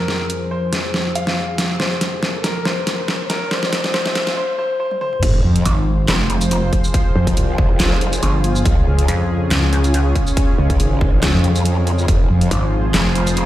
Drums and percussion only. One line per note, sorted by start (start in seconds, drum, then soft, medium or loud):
0.08 snare medium
0.30 closed hi-hat medium
0.73 snare medium
0.73 closed hi-hat medium
0.94 snare medium
1.15 closed hi-hat medium
1.27 snare medium
1.58 snare medium
1.58 closed hi-hat medium
1.80 snare medium
2.01 snare medium
2.01 closed hi-hat medium
2.23 snare medium
2.44 snare medium
2.44 closed hi-hat medium
2.65 snare medium
2.87 snare medium
2.87 closed hi-hat medium
3.08 snare medium
3.30 snare medium
3.30 closed hi-hat medium
3.51 snare medium
3.63 snare medium
3.73 snare loud
3.73 closed hi-hat medium
3.84 snare medium
3.94 snare loud
4.06 snare medium
4.15 snare loud
4.15 closed hi-hat medium
4.27 snare medium
4.91 high tom medium
5.01 mid tom medium
5.13 mid tom medium
5.23 kick loud
5.23 closed hi-hat medium
5.23 crash loud
5.56 closed hi-hat medium
5.65 closed hi-hat medium
6.08 snare loud
6.08 clap medium
6.08 closed hi-hat medium
6.30 closed hi-hat medium
6.41 closed hi-hat medium
6.41 shaker medium
6.51 closed hi-hat medium
6.73 kick medium
6.73 closed hi-hat medium
6.84 shaker medium
6.94 kick loud
6.94 closed hi-hat medium
7.27 kick medium
7.27 closed hi-hat medium
7.37 closed hi-hat medium
7.58 kick loud
7.80 snare loud
7.80 clap loud
7.80 closed hi-hat medium
7.80 shaker soft
8.01 closed hi-hat medium
8.13 closed hi-hat medium
8.13 shaker medium
8.23 closed hi-hat medium
8.44 closed hi-hat medium
8.56 shaker medium
8.65 kick loud
8.65 closed hi-hat medium
8.99 closed hi-hat medium
9.08 closed hi-hat medium
9.51 snare loud
9.51 clap medium
9.51 closed hi-hat medium
9.73 closed hi-hat medium
9.84 closed hi-hat medium
9.84 shaker medium
9.94 closed hi-hat medium
10.15 kick medium
10.15 closed hi-hat medium
10.27 shaker medium
10.37 kick loud
10.37 closed hi-hat medium
10.70 kick medium
10.70 closed hi-hat soft
10.80 closed hi-hat medium
11.01 kick loud
11.23 snare loud
11.23 clap medium
11.23 closed hi-hat medium
11.23 shaker medium
11.44 closed hi-hat soft
11.56 closed hi-hat medium
11.56 shaker medium
11.65 closed hi-hat medium
11.87 closed hi-hat medium
11.99 shaker medium
12.08 kick loud
12.08 closed hi-hat medium
12.41 closed hi-hat medium
12.51 closed hi-hat medium
12.94 snare loud
12.94 clap medium
12.94 closed hi-hat medium
13.15 closed hi-hat medium
13.27 closed hi-hat medium
13.27 shaker medium
13.37 closed hi-hat medium